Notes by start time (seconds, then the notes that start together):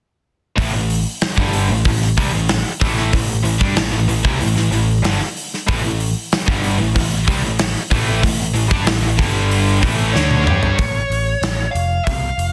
0.56 A1 A2 E3, kick, open hi-hat
0.73 A1 A2 E3
0.90 open hi-hat
1.21 snare, open hi-hat
1.36 G1 G2 D3 G3, kick
1.53 open hi-hat
1.68 A1 A2 E3
1.85 A1 A2 E3, kick, open hi-hat
2.02 snare
2.17 C2 C3 G3, kick, open hi-hat
2.32 A1 A2 E3
2.49 snare, open hi-hat
2.80 A1 A2 E3 A3, kick, open hi-hat
2.97 snare
3.12 A1 A2 E3, kick, open hi-hat
3.43 A1 A2 E3, open hi-hat
3.58 G2 G3 D4, kick
3.75 A1 A2 E3, snare, open hi-hat
3.91 A1 A2 E3
4.08 A1 A2 E3, open hi-hat
4.23 C2 C3 G3, kick
4.40 A1 A2 E3, open hi-hat
4.57 A1 A2 E3, snare
4.71 A1 A2 E3, open hi-hat
5.03 G1 G2 D3, snare, open hi-hat
5.37 open hi-hat
5.54 snare
5.68 A1 A2 E3, kick, open hi-hat
5.83 A1 A2 E3
6.00 open hi-hat
6.32 snare, open hi-hat
6.47 G1 G2 D3 G3, kick
6.64 open hi-hat
6.78 A1 A2 E3
6.95 A1 A2 E3, kick, open hi-hat
7.27 C2 C3 G3, kick, open hi-hat
7.44 A1 A2 E3
7.59 snare, open hi-hat
7.91 A1 A2 E3 A3, kick, open hi-hat
8.23 A1 A2 E3, kick, open hi-hat
8.54 A1 A2 E3, open hi-hat
8.71 G2 G3 D4, kick
8.85 A1 A2 E3, snare, open hi-hat
9.01 A1 A2 E3
9.17 G1 G2 D3 G3, kick, open hi-hat
9.51 open hi-hat
9.82 A1 A2 E3 A3, kick, open hi-hat
10.13 D2 D3 A3 D4 C#5, snare
10.31 high tom
10.44 G2 G3 D4 G4 C#5, mid tom
10.63 floor tom
10.79 A1, kick, open hi-hat
11.10 A1, open hi-hat
11.42 A1, snare, open hi-hat
11.71 F1 F5
11.75 open hi-hat
12.04 C2 F5, kick, open hi-hat
12.38 F1, open hi-hat